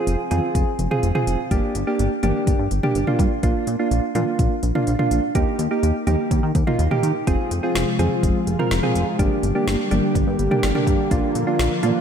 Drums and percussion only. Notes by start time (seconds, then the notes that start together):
0.07 closed hi-hat
0.31 closed hi-hat, mid tom
0.55 kick, closed hi-hat
0.79 closed hi-hat
0.91 mid tom
1.03 closed hi-hat
1.15 mid tom
1.27 closed hi-hat
1.51 kick, closed hi-hat
1.75 closed hi-hat
1.99 closed hi-hat
2.23 closed hi-hat, mid tom
2.47 kick, closed hi-hat
2.71 closed hi-hat
2.83 mid tom
2.95 closed hi-hat
3.07 mid tom
3.19 kick, closed hi-hat
3.43 kick, closed hi-hat
3.67 closed hi-hat
3.91 closed hi-hat
4.15 closed hi-hat, mid tom
4.39 kick, closed hi-hat
4.63 closed hi-hat
4.75 mid tom
4.87 closed hi-hat
4.99 mid tom
5.11 closed hi-hat
5.35 kick, closed hi-hat
5.59 closed hi-hat
5.83 closed hi-hat
6.07 closed hi-hat, mid tom
6.31 kick, closed hi-hat
6.55 kick, closed hi-hat
6.67 mid tom
6.79 closed hi-hat
6.91 mid tom
7.03 closed hi-hat
7.27 kick, closed hi-hat
7.51 closed hi-hat
7.75 snare, closed hi-hat
7.99 closed hi-hat, mid tom
8.23 kick, closed hi-hat
8.47 closed hi-hat
8.60 mid tom
8.71 snare, closed hi-hat
8.83 mid tom
8.96 closed hi-hat
9.19 kick, closed hi-hat
9.43 closed hi-hat
9.68 snare, closed hi-hat
9.91 closed hi-hat, mid tom
10.15 kick, closed hi-hat
10.39 closed hi-hat
10.51 mid tom
10.63 snare, closed hi-hat
10.75 mid tom
10.87 kick, closed hi-hat
11.11 kick, closed hi-hat
11.35 closed hi-hat
11.59 snare, closed hi-hat
11.83 closed hi-hat, mid tom